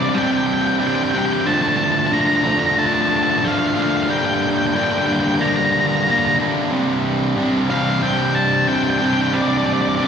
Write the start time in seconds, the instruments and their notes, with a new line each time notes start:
Already playing: distorted electric guitar C3 G3 C4 D4
0.02 lead electric guitar D5
0.09 lead electric guitar D5
0.14 distorted electric guitar C3 G3 C4 D4, lead electric guitar G5
0.23 lead electric guitar G5
0.31 lead electric guitar G5
0.38 lead electric guitar G5
0.46 lead electric guitar G5
0.54 lead electric guitar G5
0.61 lead electric guitar G5
0.67 lead electric guitar G5
0.80 distorted electric guitar C3 G3 C4 D4, lead electric guitar G5
0.87 lead electric guitar G5
0.95 lead electric guitar G5
1.03 lead electric guitar G5
1.11 distorted electric guitar C3 G3 C4 D4, lead electric guitar G5
1.18 lead electric guitar G5
1.26 lead electric guitar G5
1.33 lead electric guitar G5
1.41 lead electric guitar G5
1.46 distorted electric guitar D3 F3 A3 D4, lead electric guitar A5
1.54 lead electric guitar A5
1.62 lead electric guitar A5
1.68 lead electric guitar A5
1.77 lead electric guitar A5
1.84 lead electric guitar A5
1.92 lead electric guitar A5
1.99 lead electric guitar A5
2.07 lead electric guitar A5
2.12 distorted electric guitar D3 F3 A3 D4, lead electric guitar A#5
2.21 lead electric guitar A#5
2.27 lead electric guitar A#5
2.36 lead electric guitar A#5
2.44 distorted electric guitar D3 F3 A3 D4, lead electric guitar A#5
2.51 lead electric guitar A#5
2.59 lead electric guitar A#5
2.66 lead electric guitar A#5
2.78 distorted electric guitar D3 F3 A3 D4, lead electric guitar A5
2.86 lead electric guitar A5
2.94 lead electric guitar A5
3.02 lead electric guitar A5
3.09 lead electric guitar A5
3.16 lead electric guitar A5
3.23 lead electric guitar A5
3.31 lead electric guitar A5
3.39 lead electric guitar A5
3.43 distorted electric guitar D3 F3 A3 D4, lead electric guitar F5
3.52 lead electric guitar F5
3.59 lead electric guitar F5
3.67 lead electric guitar F5
3.75 distorted electric guitar D3 F3 A3 D4, lead electric guitar F5
3.82 lead electric guitar F5
3.90 lead electric guitar F5
3.97 lead electric guitar F5
4.03 lead electric guitar F5
4.09 distorted electric guitar D3 G3 A#3 D4, lead electric guitar G5
4.18 lead electric guitar G5
4.25 lead electric guitar G5
4.34 lead electric guitar G5
4.42 lead electric guitar G5
4.50 lead electric guitar G5
4.58 lead electric guitar G5
4.67 lead electric guitar G5
4.74 distorted electric guitar D3 G3 A#3 D4, lead electric guitar G5
4.84 lead electric guitar G5
4.91 lead electric guitar G5
4.98 lead electric guitar G5
5.06 distorted electric guitar D3 G3 A#3 D4, lead electric guitar G5
5.13 lead electric guitar G5
5.20 lead electric guitar G5
5.28 lead electric guitar G5
5.35 lead electric guitar G5
5.40 distorted electric guitar D3 G3 A#3 D4, lead electric guitar A#5
5.48 lead electric guitar A#5
5.56 lead electric guitar A#5
5.65 lead electric guitar A#5
5.72 lead electric guitar A#5
5.80 lead electric guitar A#5
5.87 lead electric guitar A#5
5.96 lead electric guitar A#5
6.04 distorted electric guitar D3 G3 A#3, lead electric guitar A#5
6.08 distorted electric guitar D4, lead electric guitar A#5
6.19 lead electric guitar A#5
6.27 lead electric guitar A#5
6.38 distorted electric guitar D3 G3 A#3 D4
6.71 distorted electric guitar C3 G3 C4 D4
7.37 distorted electric guitar C3 G3 C4 D4
7.70 distorted electric guitar C3 G3 C4 D4, lead electric guitar F5
8.02 distorted electric guitar C3 G3 C4 D4, lead electric guitar G5
8.35 lead electric guitar A5
8.68 distorted electric guitar C3 G3 C4 D4, lead electric guitar G5
8.75 lead electric guitar G5
8.83 lead electric guitar G5
8.90 lead electric guitar G5
8.98 distorted electric guitar C3 G3 C4, lead electric guitar G5
9.02 distorted electric guitar D4, lead electric guitar G5
9.14 lead electric guitar G5
9.21 lead electric guitar G5
9.28 lead electric guitar G5
9.33 distorted electric guitar C3 G3 C4 D4, lead electric guitar D5
9.42 lead electric guitar D5
9.49 lead electric guitar D5
9.58 lead electric guitar D5
9.66 lead electric guitar D5
9.73 lead electric guitar D5
9.81 lead electric guitar D5
9.89 lead electric guitar D5
9.96 distorted electric guitar C3, lead electric guitar D5
10.00 distorted electric guitar G3 C4 D4
10.05 lead electric guitar D5